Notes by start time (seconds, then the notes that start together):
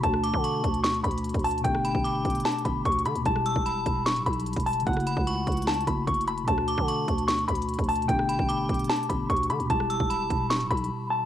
0.00 D2 B2 A3 A5, kick, closed hi-hat
0.05 D4 F#4
0.14 cross-stick
0.24 D6, closed hi-hat
0.34 D3, kick
0.44 C#6, closed hi-hat
0.64 D2, kick, closed hi-hat
0.74 closed hi-hat
0.84 C#6, snare, closed hi-hat
0.94 closed hi-hat
1.04 D2 B5, kick, closed hi-hat
1.11 closed hi-hat
1.18 closed hi-hat
1.24 closed hi-hat
1.29 closed hi-hat
1.34 D2, kick, closed hi-hat
1.39 closed hi-hat
1.44 A5, closed hi-hat, open hi-hat
1.51 closed hi-hat
1.58 B2, closed hi-hat
1.63 G1 A3 D4 G5, kick, closed hi-hat
1.69 G4
1.75 cross-stick
1.85 B5, closed hi-hat
1.95 G1, kick
2.04 D6, closed hi-hat
2.25 G1, kick, closed hi-hat
2.30 closed hi-hat
2.35 closed hi-hat
2.40 closed hi-hat
2.45 A5, snare, closed hi-hat
2.52 closed hi-hat
2.58 closed hi-hat
2.65 G1 B5, kick, closed hi-hat
2.85 D2 C#6, kick, closed hi-hat
2.92 closed hi-hat
2.99 closed hi-hat
3.05 D3 B5, closed hi-hat
3.15 D2, closed hi-hat
3.21 B2 G3
3.25 E1 E4 A5, kick, closed hi-hat
3.30 G4
3.36 cross-stick
3.46 E6, closed hi-hat
3.56 E1, kick
3.66 B5, closed hi-hat
3.86 E1, kick, closed hi-hat
4.06 C#6, snare, closed hi-hat
4.16 D1, closed hi-hat
4.26 B1 B5, kick, closed hi-hat
4.33 closed hi-hat
4.40 closed hi-hat
4.46 closed hi-hat
4.53 closed hi-hat
4.56 E1, kick, closed hi-hat
4.60 closed hi-hat
4.66 A5, closed hi-hat, open hi-hat
4.73 closed hi-hat
4.80 C#3, closed hi-hat
4.85 F#1 A3 E4 F#5, kick, closed hi-hat
4.91 F#4, closed hi-hat
4.97 cross-stick, closed hi-hat
5.07 B5, closed hi-hat
5.17 C#2, kick
5.27 C#6, closed hi-hat
5.47 C#2, kick, closed hi-hat
5.52 closed hi-hat
5.57 closed hi-hat
5.62 closed hi-hat
5.67 A5, snare, closed hi-hat
5.74 closed hi-hat
5.81 closed hi-hat
5.85 F#1 C#3 A3 E4 B5, kick, closed hi-hat
5.89 F#4
6.07 F#1 C#6, kick, closed hi-hat
6.14 closed hi-hat
6.21 closed hi-hat
6.28 B5, closed hi-hat
6.38 closed hi-hat
6.43 B2 A3
6.48 D2 D4 A5, kick, closed hi-hat
6.53 F#4
6.58 cross-stick
6.68 D6, closed hi-hat
6.78 D3, kick
6.88 C#6, closed hi-hat
7.08 D2, kick, closed hi-hat
7.18 closed hi-hat
7.28 C#6, snare, closed hi-hat
7.38 closed hi-hat
7.48 D2 B5, kick, closed hi-hat
7.55 closed hi-hat
7.62 closed hi-hat
7.69 closed hi-hat
7.74 closed hi-hat
7.79 D2, kick, closed hi-hat
7.84 closed hi-hat
7.89 A5, closed hi-hat, open hi-hat
7.96 closed hi-hat
8.02 B2, closed hi-hat
8.07 G1 A3 D4 G5, kick, closed hi-hat
8.13 G4
8.19 cross-stick
8.29 B5, closed hi-hat
8.39 G1, kick
8.49 D6, closed hi-hat
8.69 G1, kick, closed hi-hat
8.74 closed hi-hat
8.79 closed hi-hat
8.84 closed hi-hat
8.90 A5, snare
8.96 closed hi-hat
9.03 closed hi-hat
9.09 G1 B5, kick, closed hi-hat
9.30 D2 C#6, kick, closed hi-hat
9.36 closed hi-hat
9.43 closed hi-hat
9.50 D3 B5, closed hi-hat
9.60 D2, closed hi-hat
9.65 B2 G3
9.70 E1 E4 A5, kick, closed hi-hat
9.74 G4
9.80 cross-stick
9.90 E6, closed hi-hat
10.00 E1, kick
10.10 B5, closed hi-hat
10.30 E1, kick, closed hi-hat
10.50 C#6, snare, closed hi-hat
10.61 D1, closed hi-hat
10.71 B1 B5, kick, closed hi-hat
10.77 closed hi-hat
10.84 closed hi-hat
11.10 A5